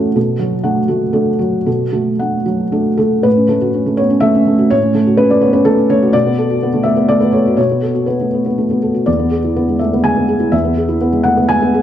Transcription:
0.00 0.12 A2 soft
0.00 0.18 E3 soft
0.00 0.18 A3 medium
0.00 0.18 C#4 soft
0.00 0.18 F#4 medium
0.00 0.16 A4 medium
0.00 0.18 F#5 soft
0.16 1.62 B2 medium
0.16 0.54 A4 soft
0.39 0.78 F#3 medium
0.39 0.78 F#4 medium
0.64 0.86 A3 soft
0.64 0.86 D4 soft
0.64 1.03 F#5 medium
0.88 1.12 A3 soft
0.88 1.29 F#4 soft
1.13 1.37 A3 soft
1.13 1.37 D4 soft
1.13 1.55 A4 medium
1.39 1.82 F#3 soft
1.39 1.82 F#4 soft
1.66 3.22 B2 soft
1.66 2.09 A4 soft
1.92 2.18 A3 soft
1.92 2.36 F#4 soft
2.19 2.44 A3 soft
2.19 2.44 D4 soft
2.19 2.63 F#5 soft
2.46 2.89 F#3 soft
2.46 2.89 F#4 soft
2.72 2.97 A3 soft
2.72 2.97 D4 soft
2.72 2.96 A4 soft
2.97 3.25 A3 soft
2.97 3.25 F#4 soft
2.97 3.25 A4 medium
3.23 4.67 A2 medium
3.23 3.98 B4 medium
3.37 3.57 C#4 soft
3.48 3.69 A3 medium
3.62 3.82 F#4 soft
3.74 3.94 C#4 soft
3.86 4.06 A3 soft
3.97 4.11 B3 soft
3.97 4.23 C#5 medium
4.10 4.30 C#4 medium
4.20 4.42 A3 medium
4.20 4.70 E5 loud
4.35 4.55 C#4 medium
4.47 4.67 A3 medium
4.58 4.78 F#4 medium
4.70 6.10 A2 medium
4.70 5.18 C#5 loud
4.83 5.02 C#4 medium
4.94 5.14 A3 medium
5.07 5.26 F#4 medium
5.17 5.38 C#4 medium
5.17 5.30 B4 medium
5.30 5.50 A3 soft
5.30 5.43 D5 medium
5.41 5.55 B3 soft
5.41 5.54 C#5 medium
5.53 5.74 C#4 medium
5.53 5.66 B4 medium
5.65 5.85 A3 medium
5.65 5.89 A4 loud
5.78 5.97 C#4 medium
5.90 6.09 A3 medium
5.90 6.13 C#5 medium
6.02 6.14 F#4 medium
6.13 7.54 B2 medium
6.13 6.84 D5 loud
6.26 6.45 B3 soft
6.38 6.57 A4 medium
6.50 6.69 F#4 medium
6.63 6.81 B3 medium
6.74 6.92 A3 medium
6.83 6.95 B3 soft
6.83 7.08 E5 medium
6.97 7.16 B3 soft
7.08 7.28 A3 medium
7.08 7.21 D5 loud
7.21 7.41 B3 medium
7.21 7.33 B4 medium
7.32 7.53 A4 soft
7.32 7.55 C#5 medium
7.47 7.66 F#4 soft
7.57 9.03 B2 medium
7.57 8.07 C#5 medium
7.71 7.90 B3 soft
7.82 8.02 A4 soft
7.95 8.15 F#4 soft
8.06 8.27 B3 soft
8.06 8.57 B4 soft
8.21 8.40 A3 soft
8.34 8.44 B3 soft
8.46 8.65 B3 soft
8.58 8.78 A3 soft
8.70 8.90 B3 soft
8.82 9.02 A4 soft
8.94 9.07 F#4 soft
9.06 10.49 E2 soft
9.06 9.80 D5 medium
9.19 9.39 B3 soft
9.31 9.51 G#4 soft
9.44 9.63 E4 soft
9.56 9.76 B3 soft
9.68 9.88 G#3 soft
9.79 9.93 A3 soft
9.79 10.04 E5 medium
9.93 10.12 B3 soft
10.04 10.24 G#3 medium
10.04 10.52 G#5 medium
10.17 10.36 B3 medium
10.29 10.48 G#4 medium
10.40 10.60 E4 soft
10.52 11.82 E2 medium
10.52 11.25 E5 medium
10.65 10.85 B3 soft
10.77 10.97 G#4 medium
10.89 11.09 E4 soft
11.01 11.21 B3 medium
11.13 11.33 G#3 soft
11.23 11.38 A3 soft
11.23 11.49 F#5 medium
11.37 11.57 B3 medium
11.49 11.69 G#3 medium
11.49 11.82 G#5 medium
11.62 11.81 B3 medium
11.74 11.82 G#4 medium

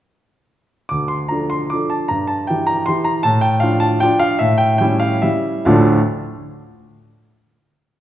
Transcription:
0.89 1.30 D2 soft
0.89 1.10 D6 medium
1.08 1.30 C6 medium
1.28 1.68 F3 soft
1.28 1.68 D4 soft
1.28 1.68 A4 soft
1.28 1.50 A#5 medium
1.50 1.71 C6 medium
1.70 2.07 F3 soft
1.70 2.08 D4 soft
1.70 2.08 A4 soft
1.70 1.91 D6 medium
1.90 2.10 A5 medium
2.08 2.49 G2 soft
2.08 2.29 A#5 medium
2.27 2.49 A5 medium
2.47 2.85 E3 soft
2.47 2.85 E4 soft
2.47 2.85 G4 soft
2.47 2.68 G5 medium
2.67 2.87 A#5 medium
2.86 3.22 E3 soft
2.86 3.23 E4 soft
2.86 3.23 G4 soft
2.86 3.06 C6 medium
3.04 3.25 A#5 medium
3.23 3.63 A2 medium
3.23 3.44 A5 loud
3.41 3.62 G5 medium
3.60 3.98 F3 soft
3.60 3.98 D4 soft
3.60 3.98 F4 soft
3.60 3.81 F5 medium
3.80 4.01 A5 medium
4.00 4.37 F3 soft
4.00 4.37 D4 soft
4.00 4.38 F4 soft
4.00 4.21 G5 loud
4.19 4.40 F5 loud
4.39 4.80 A2 medium
4.39 4.60 E5 medium
4.58 4.77 G5 medium
4.78 5.20 G3 soft
4.78 5.20 C#4 soft
4.78 5.20 E4 medium
4.78 5.01 G5 medium
5.00 5.23 F5 medium
5.22 5.63 G3 soft
5.22 5.64 C#4 soft
5.22 5.64 E4 soft
5.22 5.67 E5 medium
5.65 5.90 D2 medium
5.65 5.90 A2 medium
5.65 5.90 F3 medium
5.65 5.90 A3 medium
5.65 5.90 D4 medium
5.65 5.90 F4 medium
5.65 5.89 F5 medium

